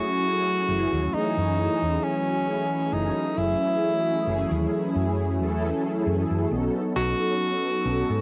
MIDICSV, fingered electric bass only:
0, 0, Header, 1, 3, 480
1, 0, Start_track
1, 0, Tempo, 895522
1, 1569, Time_signature, 4, 2, 24, 8
1, 4403, End_track
2, 0, Start_track
2, 0, Title_t, "Fingered electric bass"
2, 0, Program_c, 0, 33
2, 366, Note_on_c, 0, 30, 80
2, 455, Note_off_c, 0, 30, 0
2, 496, Note_on_c, 0, 39, 87
2, 572, Note_off_c, 0, 39, 0
2, 737, Note_on_c, 0, 42, 99
2, 894, Note_off_c, 0, 42, 0
2, 977, Note_on_c, 0, 40, 81
2, 1052, Note_off_c, 0, 40, 0
2, 1567, Note_on_c, 0, 30, 93
2, 1655, Note_off_c, 0, 30, 0
2, 1808, Note_on_c, 0, 30, 91
2, 1896, Note_off_c, 0, 30, 0
2, 2288, Note_on_c, 0, 30, 79
2, 2376, Note_off_c, 0, 30, 0
2, 2417, Note_on_c, 0, 39, 91
2, 2493, Note_off_c, 0, 39, 0
2, 2657, Note_on_c, 0, 42, 101
2, 2900, Note_off_c, 0, 42, 0
2, 2900, Note_on_c, 0, 40, 77
2, 3055, Note_off_c, 0, 40, 0
2, 3250, Note_on_c, 0, 42, 87
2, 3337, Note_off_c, 0, 42, 0
2, 3380, Note_on_c, 0, 42, 93
2, 3454, Note_off_c, 0, 42, 0
2, 3490, Note_on_c, 0, 35, 97
2, 3577, Note_off_c, 0, 35, 0
2, 3730, Note_on_c, 0, 35, 90
2, 3817, Note_off_c, 0, 35, 0
2, 4208, Note_on_c, 0, 35, 79
2, 4296, Note_off_c, 0, 35, 0
2, 4338, Note_on_c, 0, 44, 86
2, 4403, Note_off_c, 0, 44, 0
2, 4403, End_track
3, 0, Start_track
3, 0, Title_t, "Muted fingered electric bass strokes"
3, 607, Note_on_c, 9, 29, 44
3, 661, Note_off_c, 9, 29, 0
3, 4403, End_track
0, 0, End_of_file